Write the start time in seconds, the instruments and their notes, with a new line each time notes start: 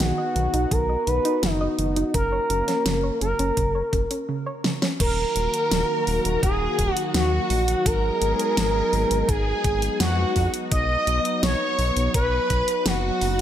Already playing: analog synth pad B3 D#4 F#4
0.00 analog synth bass B1, synth arpeggio sound D#3, analog synth lead F#4, snare, closed hi-hat
0.18 synth arpeggio sound D#5
0.36 analog synth bass B1, synth arpeggio sound D#3, closed hi-hat
0.54 analog synth bass B1, synth arpeggio sound D#4, closed hi-hat
0.71 analog synth bass B1, synth arpeggio sound D#3, analog synth lead A#4, kick, closed hi-hat
0.89 synth arpeggio sound D#5
1.07 analog synth bass B1, synth arpeggio sound D#3, analog synth lead B4, closed hi-hat
1.25 synth arpeggio sound D#4, closed hi-hat
1.43 analog synth bass F#1, synth arpeggio sound D#3, analog synth lead D#4, snare, closed hi-hat
1.61 synth arpeggio sound D#5
1.79 analog synth bass F#1, synth arpeggio sound D#3, closed hi-hat
1.96 synth arpeggio sound D#4, closed hi-hat
2.14 analog synth bass F#1, synth arpeggio sound C#3, analog synth pad A#3 C#4, analog synth lead A#4, kick, closed hi-hat
2.32 synth arpeggio sound C#5
2.50 analog synth bass F#1, synth arpeggio sound C#3, closed hi-hat
2.68 synth arpeggio sound C#4, snare, closed hi-hat
2.86 analog synth bass F#1, synth arpeggio sound C#3, snare, closed hi-hat
3.04 synth arpeggio sound C#5
3.21 analog synth bass F#1, synth arpeggio sound C#3, analog synth lead A#4, closed hi-hat
3.39 analog synth bass F#1, synth arpeggio sound C#4, closed hi-hat
3.57 analog synth bass F#1, synth arpeggio sound C#3, kick, closed hi-hat
3.75 synth arpeggio sound C#5
3.93 analog synth bass F#1, synth arpeggio sound C#3, kick, closed hi-hat
4.11 synth arpeggio sound C#4, closed hi-hat
4.29 synth arpeggio sound C#3
4.46 synth arpeggio sound C#5
4.64 synth arpeggio sound C#3, snare
4.82 synth arpeggio sound C#4, snare
5.00 analog synth bass D#1, analog synth pad D#3 F#3 A#3 D#4 F#4, analog synth lead A#4, string machine A#4, kick, closed hi-hat, crash
5.36 analog synth bass D#1, closed hi-hat
5.54 closed hi-hat
5.71 analog synth bass D#1, snare, closed hi-hat
6.07 analog synth bass D#1, open hi-hat
6.25 analog synth bass D#1, closed hi-hat
6.43 analog synth bass D#1, string machine G#4, analog synth lead G#4, kick, closed hi-hat
6.79 analog synth bass D#1, kick, closed hi-hat
6.93 string machine F#4, analog synth lead F#4, closed hi-hat
7.14 analog synth bass D#2, analog synth lead F#4, string machine F#4, snare, closed hi-hat
7.50 analog synth bass A#1, open hi-hat
7.68 closed hi-hat
7.86 analog synth bass G#1, analog synth pad G#3 B3 G#4, analog synth lead A#4, string machine A#4, kick, closed hi-hat
8.22 analog synth bass G#1, closed hi-hat
8.39 closed hi-hat
8.57 analog synth bass G#1, snare, closed hi-hat
8.93 analog synth bass G#1, open hi-hat
9.11 analog synth bass G#1, closed hi-hat
9.29 analog synth bass G#1, string machine G#4, analog synth lead G#4, kick, closed hi-hat
9.64 analog synth bass G#1, kick, closed hi-hat
9.82 closed hi-hat
10.00 analog synth bass F2, string machine F#4, analog synth lead F#4, snare, closed hi-hat
10.36 analog synth bass F2, kick, open hi-hat
10.54 closed hi-hat
10.72 analog synth bass B1, analog synth pad F#3, string machine D#5, analog synth lead D#5, kick, closed hi-hat
11.07 analog synth bass B1, closed hi-hat
11.25 closed hi-hat
11.43 analog synth bass B1, analog synth lead C#5, string machine C#5, snare, closed hi-hat
11.79 analog synth bass B1, open hi-hat
11.96 analog synth bass B1, closed hi-hat
12.14 analog synth bass B1, analog synth lead B4, string machine B4, kick, closed hi-hat
12.50 analog synth bass B1, kick, closed hi-hat
12.68 closed hi-hat
12.86 analog synth bass F#1, string machine F#4, analog synth lead F#4, snare, closed hi-hat
13.21 analog synth bass F#1, open hi-hat